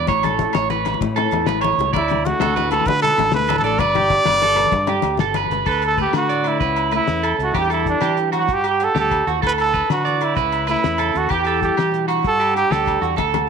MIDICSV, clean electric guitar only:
0, 0, Header, 1, 2, 480
1, 0, Start_track
1, 0, Key_signature, 2, "major"
1, 0, Tempo, 310720
1, 114, Time_signature, 12, 3, 24, 8
1, 8755, Tempo, 313152
1, 20749, End_track
2, 0, Start_track
2, 0, Title_t, "Clean electric guitar"
2, 0, Program_c, 0, 27
2, 130, Note_on_c, 0, 73, 88
2, 350, Note_off_c, 0, 73, 0
2, 369, Note_on_c, 0, 69, 72
2, 816, Note_off_c, 0, 69, 0
2, 843, Note_on_c, 0, 73, 83
2, 1065, Note_off_c, 0, 73, 0
2, 1087, Note_on_c, 0, 71, 84
2, 1534, Note_off_c, 0, 71, 0
2, 1791, Note_on_c, 0, 69, 80
2, 2245, Note_off_c, 0, 69, 0
2, 2270, Note_on_c, 0, 71, 87
2, 2491, Note_off_c, 0, 71, 0
2, 2497, Note_on_c, 0, 73, 77
2, 2957, Note_off_c, 0, 73, 0
2, 2984, Note_on_c, 0, 74, 88
2, 3440, Note_off_c, 0, 74, 0
2, 3717, Note_on_c, 0, 69, 93
2, 3939, Note_off_c, 0, 69, 0
2, 3958, Note_on_c, 0, 71, 83
2, 4408, Note_off_c, 0, 71, 0
2, 4678, Note_on_c, 0, 69, 80
2, 5128, Note_off_c, 0, 69, 0
2, 5390, Note_on_c, 0, 69, 81
2, 5616, Note_off_c, 0, 69, 0
2, 5624, Note_on_c, 0, 74, 70
2, 5853, Note_off_c, 0, 74, 0
2, 5880, Note_on_c, 0, 71, 98
2, 6101, Note_off_c, 0, 71, 0
2, 6113, Note_on_c, 0, 67, 69
2, 6567, Note_off_c, 0, 67, 0
2, 6596, Note_on_c, 0, 71, 79
2, 6821, Note_off_c, 0, 71, 0
2, 6842, Note_on_c, 0, 69, 81
2, 7293, Note_off_c, 0, 69, 0
2, 7551, Note_on_c, 0, 67, 75
2, 8009, Note_off_c, 0, 67, 0
2, 8035, Note_on_c, 0, 69, 82
2, 8263, Note_off_c, 0, 69, 0
2, 8284, Note_on_c, 0, 71, 79
2, 8738, Note_off_c, 0, 71, 0
2, 8751, Note_on_c, 0, 69, 96
2, 9208, Note_off_c, 0, 69, 0
2, 9240, Note_on_c, 0, 71, 73
2, 9693, Note_off_c, 0, 71, 0
2, 9713, Note_on_c, 0, 74, 75
2, 10169, Note_off_c, 0, 74, 0
2, 10191, Note_on_c, 0, 71, 72
2, 10648, Note_off_c, 0, 71, 0
2, 10682, Note_on_c, 0, 71, 67
2, 11134, Note_off_c, 0, 71, 0
2, 11154, Note_on_c, 0, 69, 75
2, 11610, Note_off_c, 0, 69, 0
2, 11632, Note_on_c, 0, 67, 91
2, 11861, Note_off_c, 0, 67, 0
2, 11870, Note_on_c, 0, 69, 67
2, 12328, Note_off_c, 0, 69, 0
2, 12352, Note_on_c, 0, 67, 82
2, 12809, Note_off_c, 0, 67, 0
2, 12823, Note_on_c, 0, 66, 63
2, 13285, Note_off_c, 0, 66, 0
2, 13310, Note_on_c, 0, 67, 75
2, 13761, Note_off_c, 0, 67, 0
2, 13780, Note_on_c, 0, 67, 81
2, 14244, Note_off_c, 0, 67, 0
2, 14280, Note_on_c, 0, 66, 66
2, 14505, Note_off_c, 0, 66, 0
2, 14511, Note_on_c, 0, 69, 92
2, 14970, Note_off_c, 0, 69, 0
2, 14995, Note_on_c, 0, 71, 72
2, 15452, Note_off_c, 0, 71, 0
2, 15471, Note_on_c, 0, 74, 78
2, 15930, Note_off_c, 0, 74, 0
2, 15957, Note_on_c, 0, 71, 81
2, 16413, Note_off_c, 0, 71, 0
2, 16429, Note_on_c, 0, 71, 76
2, 16889, Note_off_c, 0, 71, 0
2, 16910, Note_on_c, 0, 69, 77
2, 17370, Note_off_c, 0, 69, 0
2, 17391, Note_on_c, 0, 67, 86
2, 17622, Note_off_c, 0, 67, 0
2, 17644, Note_on_c, 0, 69, 75
2, 18097, Note_off_c, 0, 69, 0
2, 18113, Note_on_c, 0, 67, 82
2, 18571, Note_off_c, 0, 67, 0
2, 18584, Note_on_c, 0, 66, 70
2, 19046, Note_off_c, 0, 66, 0
2, 19071, Note_on_c, 0, 67, 74
2, 19530, Note_off_c, 0, 67, 0
2, 19547, Note_on_c, 0, 67, 78
2, 20007, Note_off_c, 0, 67, 0
2, 20022, Note_on_c, 0, 66, 61
2, 20250, Note_off_c, 0, 66, 0
2, 20256, Note_on_c, 0, 69, 95
2, 20721, Note_off_c, 0, 69, 0
2, 20749, End_track
0, 0, End_of_file